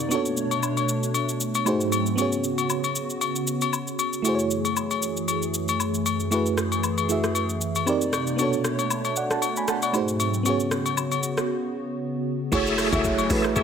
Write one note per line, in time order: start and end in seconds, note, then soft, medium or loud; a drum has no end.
0.00 0.11 C3 medium
0.00 0.11 A#3 medium
0.00 0.11 C4 medium
0.00 0.11 D#4 medium
0.00 0.12 G4 medium
0.00 0.12 A#4 medium
0.00 0.11 D5 medium
0.00 0.12 D5 medium
0.00 downlifter medium
0.09 1.65 B2 medium
0.09 1.65 A3 medium
0.09 1.62 B3 medium
0.09 1.63 D4 medium
0.09 1.65 D4 medium
0.09 1.64 F#4 medium
0.09 1.65 C#5 medium
0.09 high agogo medium
0.09 shaker medium
0.14 1.64 A4 medium
0.14 1.65 C#5 medium
0.25 shaker soft
0.37 shaker medium
0.51 high agogo medium
0.51 shaker medium
0.63 low woodblock medium
0.63 shaker medium
0.77 high agogo medium
0.77 shaker soft
0.89 shaker medium
1.03 shaker soft
1.14 high agogo medium
1.14 shaker medium
1.29 shaker medium
1.40 shaker loud
1.55 high agogo medium
1.55 shaker medium
1.65 2.18 G#2 medium
1.65 2.18 F#3 medium
1.65 2.18 A3 medium
1.65 2.18 C4 medium
1.65 2.18 D#4 medium
1.65 2.18 F#4 medium
1.65 2.19 G#4 medium
1.65 2.19 C5 medium
1.65 low woodblock medium
1.65 shaker medium
1.81 shaker soft
1.92 high agogo medium
1.92 shaker medium
2.06 shaker soft
2.16 4.23 C#3 medium
2.16 4.20 B3 medium
2.16 4.23 B3 medium
2.16 4.21 C#4 medium
2.16 4.23 F#4 medium
2.16 4.21 F#4 medium
2.16 high agogo medium
2.16 shaker medium
2.20 4.22 G#4 medium
2.20 4.23 C#5 medium
2.32 shaker soft
2.44 shaker medium
2.58 high agogo medium
2.58 shaker soft
2.70 low woodblock medium
2.70 shaker medium
2.84 high agogo medium
2.84 shaker soft
2.96 shaker medium
3.10 shaker soft
3.21 high agogo medium
3.21 shaker medium
3.36 shaker medium
3.47 shaker loud
3.61 high agogo medium
3.61 shaker medium
3.73 low woodblock medium
3.73 shaker medium
3.87 shaker soft
3.99 high agogo medium
3.99 shaker medium
4.13 shaker soft
4.22 7.83 F#2 medium
4.22 7.83 E3 medium
4.22 6.27 A3 medium
4.22 7.83 A3 medium
4.22 6.27 E4 medium
4.22 6.28 F#4 medium
4.22 6.30 G#4 medium
4.22 high agogo medium
4.22 shaker medium
4.27 6.29 G#4 medium
4.27 4.34 C5 medium
4.35 6.33 C#5 medium
4.39 shaker soft
4.51 shaker medium
4.65 high agogo medium
4.65 shaker soft
4.77 low woodblock medium
4.77 shaker medium
4.91 high agogo medium
4.91 shaker soft
5.02 shaker medium
5.17 shaker soft
5.28 high agogo medium
5.28 shaker medium
5.42 shaker medium
5.54 shaker loud
5.68 high agogo medium
5.68 shaker medium
5.80 low woodblock medium
5.80 shaker medium
5.94 shaker soft
6.06 high agogo medium
6.06 shaker medium
6.20 shaker soft
6.31 7.07 A3 medium
6.31 7.08 E4 medium
6.31 7.09 F#4 medium
6.31 7.85 G#4 medium
6.31 7.10 G#4 medium
6.31 7.11 B4 medium
6.31 high agogo medium
6.31 shaker medium
6.46 shaker soft
6.58 cross-stick medium
6.58 shaker medium
6.72 high agogo medium
6.72 shaker medium
6.83 low woodblock medium
6.83 shaker medium
6.98 high agogo medium
6.98 shaker soft
7.09 7.87 A3 medium
7.09 7.87 E4 soft
7.09 7.87 F#4 soft
7.09 7.88 G#4 medium
7.09 7.88 E5 medium
7.09 shaker medium
7.24 cross-stick medium
7.24 shaker soft
7.35 high agogo medium
7.35 shaker medium
7.50 shaker medium
7.61 shaker loud
7.75 high agogo medium
7.75 shaker medium
7.86 8.38 C3 medium
7.86 8.38 A#3 medium
7.86 8.38 C4 medium
7.86 8.39 D#4 medium
7.86 8.38 D#4 medium
7.86 8.39 G4 medium
7.86 8.39 A#4 medium
7.86 8.38 D5 medium
7.86 8.40 D5 medium
7.86 low woodblock medium
7.86 shaker medium
8.01 shaker medium
8.13 cross-stick medium
8.13 high agogo medium
8.13 shaker medium
8.27 shaker soft
8.36 9.92 B2 medium
8.36 9.92 A3 medium
8.36 9.90 B3 medium
8.36 9.90 D4 medium
8.36 9.92 D4 medium
8.36 9.91 F#4 medium
8.36 9.92 C#5 medium
8.36 high agogo medium
8.36 shaker medium
8.41 9.92 A4 medium
8.41 9.17 C#5 medium
8.53 shaker soft
8.64 cross-stick medium
8.64 shaker medium
8.79 high agogo medium
8.79 shaker soft
8.90 low woodblock medium
8.90 shaker medium
9.05 high agogo medium
9.05 shaker soft
9.16 9.31 D5 medium
9.16 9.30 F#5 medium
9.16 shaker medium
9.31 9.56 F#5 medium
9.31 9.56 A5 medium
9.31 cross-stick medium
9.31 shaker soft
9.42 high agogo medium
9.42 shaker medium
9.56 9.68 G#5 medium
9.56 9.68 B5 medium
9.56 shaker medium
9.68 9.82 F#5 medium
9.68 9.82 A5 medium
9.68 cross-stick loud
9.68 shaker loud
9.82 10.08 D5 medium
9.82 10.07 F#5 medium
9.82 high agogo medium
9.82 shaker medium
9.93 10.45 G#2 medium
9.93 10.45 F#3 medium
9.93 10.45 A3 medium
9.93 10.45 C4 medium
9.93 10.46 D#4 medium
9.93 10.45 F#4 medium
9.93 10.46 G#4 medium
9.93 10.47 C5 medium
9.93 low woodblock medium
9.93 shaker medium
10.08 shaker medium
10.20 high agogo medium
10.20 shaker medium
10.34 shaker soft
10.43 12.50 C#3 medium
10.43 12.47 B3 medium
10.43 12.50 B3 medium
10.43 12.48 C#4 medium
10.43 12.50 F#4 medium
10.43 12.49 F#4 medium
10.43 high agogo medium
10.43 shaker medium
10.48 12.50 G#4 medium
10.48 12.51 C#5 medium
10.60 shaker soft
10.71 cross-stick medium
10.71 shaker medium
10.86 high agogo medium
10.86 shaker soft
10.97 low woodblock medium
10.97 shaker medium
11.12 high agogo medium
11.12 shaker soft
11.23 shaker medium
11.38 cross-stick medium
11.38 shaker soft
12.52 12.90 F#1 medium
12.52 13.63 F#3 medium
12.52 12.84 A3 loud
12.52 13.63 A3 medium
12.52 12.84 E4 loud
12.52 13.63 E4 medium
12.52 12.84 F#4 loud
12.52 12.89 G#4 medium
12.52 12.85 G#4 loud
12.52 12.89 A4 medium
12.52 12.85 C#5 loud
12.52 12.89 E5 loud
12.52 13.63 G#5 medium
12.52 kick loud
12.52 downlifter medium
12.52 high agogo medium
12.52 shaker medium
12.67 shaker soft
12.78 cross-stick medium
12.78 open hi-hat soft
12.78 shaker medium
12.92 13.28 F#1 loud
12.92 13.23 A3 medium
12.92 13.23 E4 medium
12.92 13.24 F#4 medium
12.92 13.05 G#4 medium
12.92 13.24 G#4 medium
12.92 13.05 A4 medium
12.92 13.05 E5 medium
12.92 13.24 E5 medium
12.92 kick loud
12.92 high agogo medium
12.92 shaker medium
13.04 kick loud
13.04 shaker medium
13.18 high agogo medium
13.18 shaker medium
13.29 13.55 A1 medium
13.29 13.63 A3 medium
13.29 13.63 E4 medium
13.29 13.63 F#4 medium
13.29 13.45 G#4 medium
13.29 13.63 G#4 medium
13.29 13.45 A4 medium
13.29 13.63 B4 medium
13.29 13.45 E5 medium
13.29 open hi-hat soft
13.29 shaker medium
13.44 cross-stick medium
13.44 shaker soft
13.56 13.63 C#2 medium
13.56 13.63 G#4 medium
13.56 13.63 A4 medium
13.56 13.63 E5 loud
13.56 kick loud
13.56 high agogo medium
13.56 shaker medium